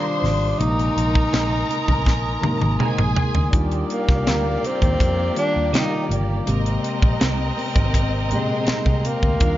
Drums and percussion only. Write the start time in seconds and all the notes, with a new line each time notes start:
0.22 snare, open hi-hat, high conga
0.60 closed hi-hat, muted conga
0.79 closed hi-hat
0.98 closed hi-hat
1.15 kick
1.33 snare, closed hi-hat, high conga
1.69 closed hi-hat, muted conga
1.88 kick, low conga
2.05 kick, snare, muted conga
2.43 high tom, muted conga, low conga
2.62 high tom
2.79 mid tom, high conga
2.98 mid tom
3.16 floor tom, high conga
3.35 floor tom
3.53 kick, closed hi-hat, muted conga
3.71 closed hi-hat
3.90 closed hi-hat
4.09 kick, snare
4.27 snare, closed hi-hat, high conga
4.63 closed hi-hat, muted conga
4.81 kick, closed hi-hat, low conga
5.00 kick, closed hi-hat, muted conga
5.36 closed hi-hat
5.73 snare, closed hi-hat, high conga
6.09 closed hi-hat, high conga
6.47 closed hi-hat, muted conga
6.66 closed hi-hat
6.84 closed hi-hat
7.02 kick
7.21 snare, closed hi-hat, high conga
7.58 open hi-hat, muted conga
7.76 kick, closed hi-hat, low conga
7.94 kick, closed hi-hat, muted conga
8.31 closed hi-hat, muted conga, low conga
8.67 snare, closed hi-hat, high conga
8.86 kick
9.03 closed hi-hat, high conga
9.23 kick
9.40 kick, closed hi-hat, muted conga